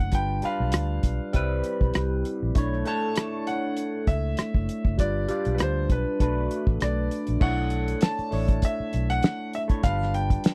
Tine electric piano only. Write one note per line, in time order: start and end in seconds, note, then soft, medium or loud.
0.00 0.13 D4 medium
0.00 0.15 E4 medium
0.00 0.15 C#5 medium
0.12 0.35 G3 medium
0.12 0.36 D4 medium
0.12 0.36 F4 medium
0.12 0.37 B4 medium
0.42 1.32 G3 medium
0.42 1.34 D4 medium
0.42 1.34 F4 medium
0.42 1.35 B4 medium
1.33 2.31 G3 medium
1.33 2.32 C4 medium
1.33 2.32 E4 medium
1.33 2.33 B4 medium
2.55 2.79 A3 medium
2.55 2.79 D4 medium
2.55 2.80 E4 medium
2.55 2.80 C#5 medium
2.85 3.76 A3 medium
2.85 3.77 D4 medium
2.85 3.77 E4 medium
2.85 3.77 C#5 medium
4.97 5.21 G3 medium
4.97 5.22 D4 medium
4.97 5.22 F4 medium
4.97 5.23 B4 medium
5.28 6.18 G3 medium
5.28 6.19 D4 medium
5.28 6.20 F4 medium
5.28 6.20 D5 medium
6.20 7.17 A3 medium
6.20 7.18 D4 medium
6.20 7.18 F#4 medium
6.20 7.18 B4 medium
7.40 8.09 A3 medium
7.40 8.09 D4 medium
7.40 8.10 E4 medium
7.40 8.10 C#5 medium
8.31 9.21 A3 medium
8.31 9.22 D4 medium
8.31 9.22 E4 medium
8.31 9.23 C#5 medium
9.68 9.79 A3 medium
9.68 9.79 D4 medium
9.68 9.80 E4 medium
9.68 9.80 C#5 medium
9.82 10.51 G3 medium
9.82 10.51 D4 medium
9.82 10.51 F4 medium
9.82 10.52 B4 medium